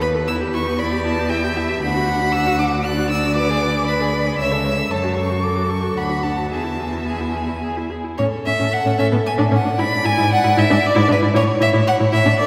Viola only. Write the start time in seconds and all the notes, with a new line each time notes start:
0.02 B4
0.15 A4
0.27 E4
0.40 G4
0.54 E4
0.67 G4
0.80 E4
0.93 G4
1.05 E4
1.19 G4
1.31 E4
1.44 G4
1.57 E4
1.69 G4
1.82 D4
1.94 F#4
2.08 D4
2.21 F#4
2.33 D4
2.47 F#4
2.59 D4
2.72 F#4
2.84 D4
2.98 F#4
3.10 D4
3.24 F#4
3.36 B4
3.50 G#4
3.63 B4
3.75 G#4
3.87 B4
4.01 G#4
4.13 B4
4.26 G#4
4.39 C#5
4.51 A4
4.64 C#5
4.78 A4
4.91 A4
5.04 F#4
5.16 A4
5.30 F#4
5.43 A4
5.56 F#4
5.69 A4
5.83 F#4
5.96 D4
6.09 F#4
6.24 D4
6.38 F#4
6.51 G#4
6.64 E4
6.79 G#4
6.93 E4
7.07 G#4
7.21 E4
7.35 G#4
7.48 E4
7.63 G#4
7.77 E4
7.90 G#4
8.04 E4
8.18 C#4
8.46 C#4
8.59 C#4
8.85 C#4
8.98 C#4
9.12 B3
9.38 D4
9.51 C#4
9.64 D4
9.78 E4
10.04 E4
10.17 E4
10.43 E4
10.56 E4
10.70 D4
10.95 E4
11.08 D4
11.21 E4
11.34 E4
11.60 E4
11.72 E4
11.99 E4
12.12 E4
12.25 D4